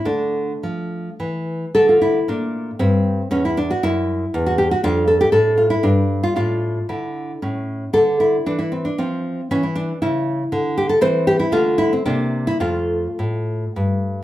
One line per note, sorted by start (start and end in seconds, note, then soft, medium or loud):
0.05 0.52 D3 soft
0.05 1.71 A3 soft
0.05 1.16 D4 medium
0.63 1.09 F3 soft
1.20 1.64 E3 soft
1.75 2.18 D3 medium
1.75 3.27 A3 soft
1.75 1.88 A4 medium
1.89 2.01 F4 medium
2.02 2.27 E4 medium
2.28 2.70 A#2 medium
2.28 2.78 D4 medium
2.79 3.21 G2 medium
2.79 3.29 C4 medium
3.31 3.72 E2 medium
3.31 3.44 C#4 medium
3.45 3.57 E4 medium
3.57 3.70 D4 medium
3.71 3.83 F#4 medium
3.83 4.24 F#2 medium
3.83 4.44 E4 medium
4.34 4.73 E2 medium
4.46 4.58 F#4 medium
4.58 4.70 G4 medium
4.71 4.83 F#4 medium
4.83 5.23 F2 medium
4.83 5.79 D4 soft
4.83 5.07 F4 medium
5.07 5.20 A4 medium
5.21 5.32 G4 medium
5.32 5.73 A2 medium
5.32 5.56 A4 medium
5.57 5.70 F4 medium
5.70 5.83 E4 medium
5.83 6.25 G2 medium
5.83 6.21 D4 medium
6.23 6.35 F4 medium
6.36 6.78 A2 soft
6.36 7.38 D4 soft
6.36 6.87 F4 medium
6.89 7.31 D3 soft
6.89 7.39 E4 soft
7.42 7.84 A2 soft
7.42 7.90 C#4 soft
7.93 8.35 D3 medium
7.93 8.45 D4 soft
7.93 8.19 A4 medium
8.20 8.45 E4 medium
8.46 8.88 E3 soft
8.46 8.59 D4 medium
8.59 8.72 E4 medium
8.72 8.85 C4 medium
8.85 8.98 D4 medium
8.98 9.40 F3 medium
8.98 9.48 C4 medium
9.51 9.92 E3 medium
9.51 9.63 C#4 medium
9.63 9.76 E4 soft
9.75 10.00 D4 medium
10.02 10.42 C#3 medium
10.02 10.74 E4 medium
10.52 10.92 D3 medium
10.78 10.89 G4 medium
10.89 11.01 A4 medium
11.01 11.42 E3 medium
11.01 11.49 C4 soft
11.01 11.26 C5 loud
11.27 11.39 G4 medium
11.39 11.52 E4 medium
11.52 11.94 D3 medium
11.52 12.01 A3 soft
11.52 11.77 F4 medium
11.78 11.91 E4 medium
11.93 12.05 C4 medium
12.06 12.50 C3 medium
12.06 12.57 A#3 soft
12.06 12.44 D4 medium
12.47 12.60 E4 medium
12.60 13.06 F2 medium
12.60 14.24 A3 soft
12.60 13.71 F4 medium
13.19 13.64 A2 soft
13.76 14.20 G2 soft